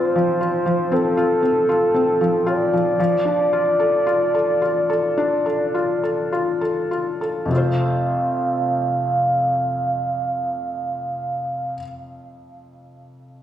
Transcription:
Already playing: F3 C4 F4 C5
0.16 F3
0.41 F4
0.66 F3
0.92 C4 A4
1.17 F4
1.43 C4
1.69 F4
1.94 C4
2.21 F3
2.47 F4 D5
2.73 F3
3.00 F3
3.25 D4
3.53 F4
3.80 A4
4.07 F4
4.35 A4
4.62 F4
4.90 A4
5.18 D4
5.46 A4
5.74 F4
6.03 A4
6.33 F4
6.61 A4
6.91 F4
7.21 A4
7.45 F2 C3
7.50 A3 C4 F5
7.55 F4 C5

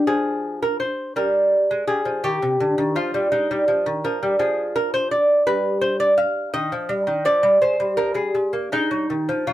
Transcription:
0.07 F3 G#4
0.62 A#4
0.80 C5
1.16 G3 A#4
1.71 G#3
1.87 G3 G#4
2.05 F3
2.24 D#3 G4
2.42 C3
2.60 D3
2.78 D#3
2.96 F3 F4
3.14 G3
3.32 G#3 D#4
3.51 G3
3.68 F3
3.86 D#3
4.04 F3 A#4
4.23 G3
4.39 F3 G#4
4.76 A#4
4.94 C5
5.11 D5
5.47 G3 B4
5.81 C5
6.00 D5
6.18 F5
6.54 D#3 D#5
6.72 F3
6.89 G3
7.07 D#3
7.25 F3 D5
7.43 G3
7.62 G#3 C5
7.80 G3
7.97 F3 A#4
8.14 G3 G#4
8.35 G#3
8.53 A#3
8.72 G#3 D#4
8.91 F#3
9.10 D#3
9.29 F3
9.47 F#3 F4

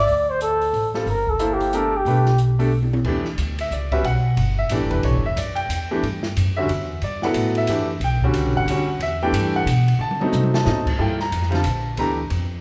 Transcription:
Already playing: D5
0.08 D2, open hi-hat
0.30 C5
0.41 A4, closed hi-hat
0.62 open hi-hat
0.73 A1, open hi-hat
0.94 G3 C4 F4 A4, snare
1.06 G1 A#4, open hi-hat
1.27 A4, kick
1.39 A#3 E4 A4 C5, closed hi-hat
1.54 G4
1.61 open hi-hat
1.73 A3 D4 G4 A4 A#4, closed hi-hat
1.97 G4
2.05 B1 A3 D4 G4 B4, open hi-hat
2.26 snare
2.38 closed hi-hat
2.59 A3 D4 G4 A4, open hi-hat
2.83 high tom
2.93 high tom
3.04 E2 E3 A3 D4 G4, kick, crash
3.25 snare
3.38 D2, hi-hat pedal, ride
3.58 E5, ride
3.71 C#2 D5, hi-hat pedal
3.92 G3 C#4 F#4 B4 E5, kick, ride
4.03 B1 F#5, ride
4.37 G1, ride
4.59 E5
4.69 A1 E3 A3 D4 G4 D5, hi-hat pedal, ride
4.81 G1
4.90 E1 B4, kick, ride
5.03 B1 C#5, ride
5.14 G1
5.25 E1 E5
5.36 F#2 D5, hi-hat pedal, ride
5.55 G5, ride
5.69 E2, hi-hat pedal, ride
5.91 E3 A3 D4 G4
6.02 G2, ride
6.23 snare
6.37 F#2, hi-hat pedal, ride
6.57 D3 G3 C#4 F#4 E5
6.69 E2, ride
7.02 G2 D5, ride
7.22 F#3 B3 E4 A4 F#5, snare
7.34 A2, hi-hat pedal, ride
7.55 E5, ride
7.67 F#2 E3 A3 D4 G4, hi-hat pedal, ride
8.00 B1, ride
8.04 G5
8.21 D3 G3 C#4 F#4, kick
8.33 C#2, hi-hat pedal, ride
8.45 B1
8.56 G1 F#5
8.66 D2 D3, hi-hat pedal, ride
8.70 G3 C#4 F#4
8.99 E2 E5, ride
9.22 E3 A3 D4 G4 G5
9.32 G2, hi-hat pedal, ride
9.56 F#5
9.66 B2, hi-hat pedal, ride
9.88 ride
9.99 D3 A5
10.11 mid tom
10.20 F#3 A3 C4 D#4, mid tom
10.32 C3, hi-hat pedal, mid tom
10.43 mid tom
10.54 A5, snare
10.65 A2 F#3 A3 C4 D#4, snare
10.86 kick, crash
10.98 G2 F3 A#3 E4 A4 G5
11.20 A#5, snare
11.32 F2, hi-hat pedal, ride
11.42 snare
11.50 D3 G3 C4 F4, ride
11.54 A5, snare
11.64 A#1, hi-hat pedal, ride
11.97 D2 E3 A3 D4 G4 A#5, ride
12.30 F2, ride

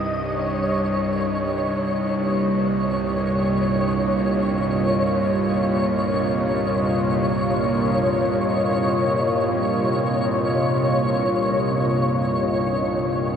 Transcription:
Already playing: C2 G2 D#4 G4 D#5
0.00 C3 C#5
1.13 A#3
1.68 F4

